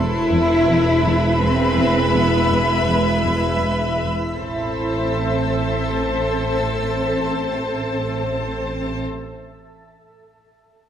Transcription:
Already playing: E1 E2 G#3 E4 B4 C5 E5 A5 B5
0.32 E2
0.68 E2
1.05 E2
1.41 E2 C4
1.77 E2
2.14 E2 B3
2.51 E2
2.87 E2 G#3
3.23 E2
3.59 E2
3.96 E2
4.33 A1 C4 A4 C5 E5 A5

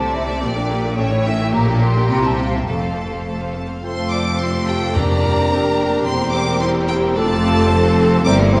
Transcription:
Already playing: C2 C3 D5 A5
0.00 A3 C4 E5
0.14 C4 E4 C5 E5
0.28 A3 C4 E5
0.42 A#1 A#2 A#3 G4 A#4 G5
0.56 D4 A#4 D5
0.70 A#3 G4 A#4
0.84 D4 A#4 D5
0.97 A1 A2 C#4 A4 C#5 E5
1.11 E4 C#5
1.26 C#4 A4 E5
1.39 E4 C#5
1.53 A#1 A#2 A#3 G4 A#4 A#5
1.67 D4 A#4 D5
1.82 A#3 G4 A#4 C6
1.96 D4 A#4 D5
2.09 C2 C3 A#3 G4 G5 A#5
2.24 C4 E4 E5 A5
2.39 A#3 G4 F5 G5
2.53 C4 E4 E5 G5
2.67 F1 F2 A3 A4 F5 A5
2.82 C4 C5 F5
2.97 A3 A4 A5
3.11 C4 C5 F5
3.25 A3 A4 A5
3.41 C4 C5 F5
3.55 A3 A4 A5
3.69 C4 C5 F5
3.83 F1 F2 A3 C4 F4 A4 C5 F5 C6
4.13 D5 D6
4.40 A3 C4 F4 A4 C5 C6
4.68 G4 G5
4.95 F2 A#3 D4 G4 A#4 D5 G5 A#5
5.23 G3
5.51 C4 D4 G4 A#4
5.79 A#3
6.07 E1 E2 A3 A#3 C4 G4 C5 C6
6.34 D5 D6
6.61 G3 A#3 E4 G4 C5 C6
6.88 G4 G5
7.16 F1 F2 A3 D4 F4 A4 D5 F5 A5
7.44 C4
7.71 A3 C4 A4 C5
8.25 G1 G2 G3 A#3 C4 E4 G4 A#4 C5 D5 E5 D6
8.39 A#3 E4 A#4
8.52 G3 C4 G4 A#4 C5 E5 C6

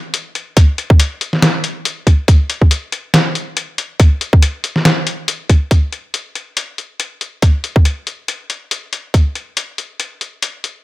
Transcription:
0.14 closed hi-hat
0.35 closed hi-hat
0.57 kick, closed hi-hat
0.78 closed hi-hat
0.90 kick
1.00 closed hi-hat
1.21 closed hi-hat
1.33 snare
1.42 snare, closed hi-hat
1.64 closed hi-hat
1.85 closed hi-hat
2.07 kick, closed hi-hat
2.28 kick, closed hi-hat
2.50 closed hi-hat
2.62 kick
2.71 closed hi-hat
2.92 closed hi-hat
3.14 snare, closed hi-hat
3.35 closed hi-hat
3.57 closed hi-hat
3.78 closed hi-hat
4.00 kick, closed hi-hat
4.21 closed hi-hat
4.33 kick
4.42 closed hi-hat
4.64 closed hi-hat
4.76 snare
4.85 snare, closed hi-hat
5.07 closed hi-hat
5.28 closed hi-hat
5.49 kick, closed hi-hat
5.71 kick, closed hi-hat
5.92 closed hi-hat
6.14 closed hi-hat
6.35 closed hi-hat
6.57 closed hi-hat
6.78 closed hi-hat
7.00 closed hi-hat
7.21 closed hi-hat
7.42 kick, closed hi-hat
7.64 closed hi-hat
7.76 kick
7.85 closed hi-hat
8.07 closed hi-hat
8.28 closed hi-hat
8.50 closed hi-hat
8.71 closed hi-hat
8.93 closed hi-hat
9.14 kick, closed hi-hat
9.35 closed hi-hat
9.57 closed hi-hat
9.78 closed hi-hat
10.00 closed hi-hat
10.21 closed hi-hat
10.42 closed hi-hat
10.64 closed hi-hat

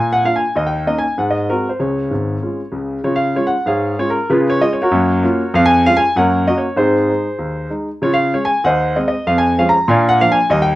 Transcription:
Already playing: A#2 G#5
0.13 F#5
0.24 A#3 D4 F4 F5
0.36 G#5
0.56 D#2 D#5
0.67 G5
0.87 A#3 C#4 D#4 D#5
0.98 G#5
1.18 G#2 F#5
1.30 D#5
1.49 G#3 C4 F#4 A#4
1.69 C5
1.79 C#2 C#3 C#5
2.11 G#1 G#2
2.42 G#3 C#4 F4
2.72 C#2 C#3
3.04 C#3 F4 C#5
3.16 F5
3.35 G#3 C#4 F4 C#5
3.47 F#5
3.66 G#2 G#4 C#5 F5
3.98 G#3 C#4 F4 C#5
4.10 A#4
4.30 C#3 F4 G#4 B4
4.50 C#5
4.60 G#3 C#4 F4 D#5
4.73 C#5
4.82 F#4 A#4 C#5
4.91 F#2 A#3
5.23 A#3 C#4 F4
5.54 F2 F5
5.66 G#5
5.85 G#3 C#4 F4 F5
5.97 G#5
6.16 F#2 A#3 A#4 C#5 F#5
6.47 A#3 C#4 F#4 D#5
6.58 C#5
6.76 G#2 C4 D#4 G#4 C5
7.09 G#3 D#4
7.39 D#2
7.70 G#3 D#4
8.02 C#3 F4 C#5
8.14 F5
8.34 G#3 C#4 C#5
8.45 G#5
8.64 D#2 C5 D#5 F#5
8.96 G#3 C4 D#5
9.08 D#5
9.27 F2 F5
9.38 G#5
9.58 F3 G#3 C#4 F5
9.69 A#5
9.88 A#2 D4 D5 F5 G#5
10.09 F#5
10.20 F3 A#3 D4 F5
10.32 G#5
10.50 D#2 G3 D#5
10.62 G5

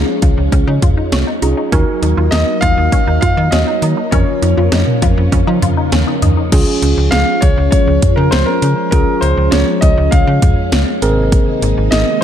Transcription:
Already playing: F3 G#3 C#4 D#4 F4 G#4
0.22 C#2 F4, kick, closed hi-hat
0.37 C#2
0.52 C#2 C#4, kick, closed hi-hat
0.67 C#3 D#4
0.82 C#2 F4, kick, closed hi-hat, mid tom
0.97 D#4
1.12 C2 C#4, snare, closed hi-hat
1.27 D#4
1.42 C2 C#4 D#4 F4 G#4, closed hi-hat
1.57 D#4
1.72 D#2 F#3 A#3 C#4 D#4 F#4 A#4, kick, closed hi-hat
2.02 D#2 D#4, closed hi-hat
2.17 D#2 F4
2.31 D#2 D#4 D#5, snare, closed hi-hat
2.61 D#2 F4 F5, kick, closed hi-hat
2.77 D#2
2.92 C#4, kick, closed hi-hat
3.07 D#2 D#4
3.21 F4 F5, kick, closed hi-hat, mid tom
3.37 D#3 D#4
3.51 D#2 C#4 D#4 F#4 C#5 D#5, snare, closed hi-hat
3.67 D#4
3.82 D#3 D#4, closed hi-hat
3.97 D#4
4.11 F2 C#3 F3 C#4 F4 A#4 C#5, kick, closed hi-hat
4.42 F2 D#4, closed hi-hat
4.57 F2 F4
4.72 F2 D#4, snare, closed hi-hat
4.87 mid tom
5.02 F2 F4, kick, closed hi-hat
5.17 F2
5.32 F2 C#4, kick, closed hi-hat
5.47 F3 D#4
5.62 F2 F4, closed hi-hat, mid tom
5.77 D#4
5.92 D#2 C#4, snare, closed hi-hat
6.07 D#4
6.22 D#2 D#4, closed hi-hat, mid tom
6.37 D#4
6.52 C#2 F3 G#3 C#4 F4 G#4, kick, closed hi-hat, crash
6.82 C#2, closed hi-hat
6.97 C#2
7.11 C#2 F5, snare, closed hi-hat
7.41 C#2 C#5, kick, closed hi-hat
7.57 C#2
7.71 C#5, kick, closed hi-hat
7.87 C#2
8.02 kick, closed hi-hat, mid tom
8.16 C#3 A#4
8.31 C#2 C5, snare, closed hi-hat
8.46 A#4
8.62 C#3, closed hi-hat
8.91 C#2 C#4 F4 G#4 A#4, kick, closed hi-hat
9.21 C#2 C5, closed hi-hat
9.37 C#2
9.51 C#2 C#5, snare, closed hi-hat
9.81 C#2 D#5, kick, closed hi-hat
9.97 C#2
10.11 C#2 F5, kick, closed hi-hat
10.27 C#3
10.42 C#2, kick, closed hi-hat, mid tom
10.72 C#2, snare, closed hi-hat
11.02 G#1 C3 D#3 A#3 C4 D#4 G#4 A#4, closed hi-hat
11.32 kick, closed hi-hat
11.62 G#1, closed hi-hat
11.77 G#1
11.91 G#1 D#5, snare, closed hi-hat

